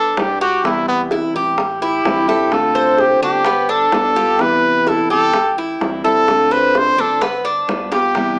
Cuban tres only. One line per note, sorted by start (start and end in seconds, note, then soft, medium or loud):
0.00 0.39 D4 medium
0.41 0.64 G4 medium
1.12 1.34 E4 medium
1.36 1.81 G4 medium
1.82 2.27 E4 medium
2.29 2.74 A4 medium
2.75 3.21 C5 medium
3.23 3.45 D4 medium
3.46 3.69 B3 medium
3.69 4.15 D4 medium
4.16 4.39 G4 medium
4.87 5.10 E4 medium
5.10 5.56 G4 medium
5.58 6.03 E4 medium
6.04 6.50 A4 medium
6.51 6.97 C5 medium
6.98 7.21 D4 medium
7.21 7.44 B3 medium
7.45 7.90 D4 medium
7.92 8.14 G4 medium